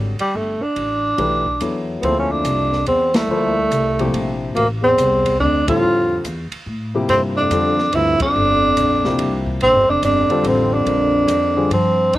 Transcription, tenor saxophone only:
0.20 G3
0.36 A3
0.62 D4
2.01 B3 C4
2.19 C#4
2.32 D4
2.88 C4
3.15 A3
4.55 A#3
4.84 C4
5.40 D4
5.69 F4
7.09 C4
7.37 D4
7.94 E4
8.22 D4
9.62 C4
9.90 D4
10.05 D4
10.48 C4
10.74 D4
11.73 C4

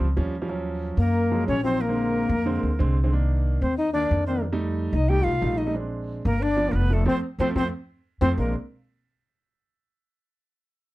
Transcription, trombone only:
0.99 A#3
1.48 C#4
1.64 C4
1.81 A#3
3.62 C4
3.78 D#4
3.93 D4
4.28 C4
4.95 D#4
5.09 G4
5.24 F4
5.58 D#4
6.26 A#3
6.41 D4
6.69 A#3
6.75 B3
6.92 A3
7.08 C4
7.40 C4
7.56 C4
8.21 C4
8.38 A#3

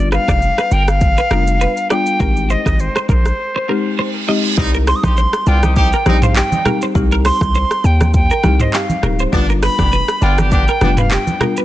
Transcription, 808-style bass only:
Already playing: G1
0.28 F1
0.71 G1
1.31 F1
2.20 G#1
2.66 G#1
3.09 A#1
4.58 C2
5.03 A#1
5.47 C2
6.06 A#1
6.95 C2
7.41 C2
7.84 D#2
8.44 C2
9.03 D1
9.33 G1
9.79 F1
10.22 G1
10.81 F1

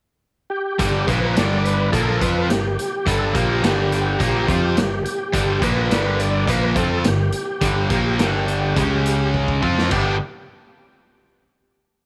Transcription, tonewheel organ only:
0.50 G4
1.07 B4
1.36 D5
1.64 B4
1.92 A4
2.21 B4
2.49 G4
3.06 A4
3.35 G4
3.65 G4
5.05 G4
5.63 B4
6.19 D5
6.49 B4
6.78 A4
7.07 G4
9.92 G4

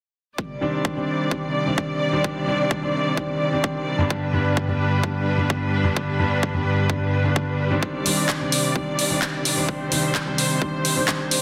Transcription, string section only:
0.38 C3 D#3 G3 D5
4.10 G2 D4 B4
7.83 C3 D#3 D5
9.69 C5

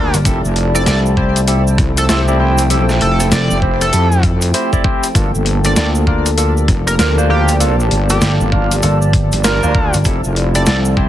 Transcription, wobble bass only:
0.25 F1
0.44 F1
1.78 C2
2.09 C2
2.73 B1
3.01 F1
3.51 F1
3.93 F2
5.15 G1
5.34 G1
6.68 F1
6.99 D2
7.91 G1
8.40 G1
9.32 G1
10.05 F1
10.25 F1

